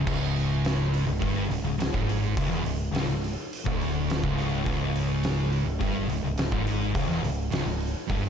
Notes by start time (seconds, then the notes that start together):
0.05 C#1 C#2, kick, crash
0.36 open hi-hat
0.65 snare, open hi-hat
0.94 open hi-hat
1.06 C#1 C#2
1.21 G1 G2, kick, open hi-hat
1.49 C#1 C#2, open hi-hat
1.62 C#1 C#2
1.78 C#1 C#2, open hi-hat
1.82 snare
1.92 G#1 G#2, kick
1.97 snare
2.09 open hi-hat
2.36 C#1 C#2, kick, open hi-hat
2.48 E1 E2
2.62 C#1 C#2, open hi-hat
2.92 C#1 C#2, open hi-hat
2.96 snare
3.08 C#1 C#2
3.24 open hi-hat
3.53 open hi-hat
3.65 D1 D2, kick
3.81 open hi-hat
4.10 snare, open hi-hat
4.23 C#1 C#2, kick, snare
4.38 snare, open hi-hat
4.65 C#1 C#2, kick, open hi-hat
4.96 open hi-hat
5.23 snare, open hi-hat
5.53 open hi-hat
5.65 C#1 C#2
5.79 G1 G2, kick, open hi-hat
6.08 C#1 C#2, open hi-hat
6.23 C#1 C#2
6.36 C#1 C#2, snare, open hi-hat
6.52 G#1 G#2, kick
6.67 open hi-hat
6.95 C#1 C#2, kick, open hi-hat
7.07 E1 E2, snare
7.22 C#1 C#2, open hi-hat
7.51 C#1 C#2, snare, open hi-hat
7.65 C#1 C#2
7.80 open hi-hat
8.09 G1 G2, kick, open hi-hat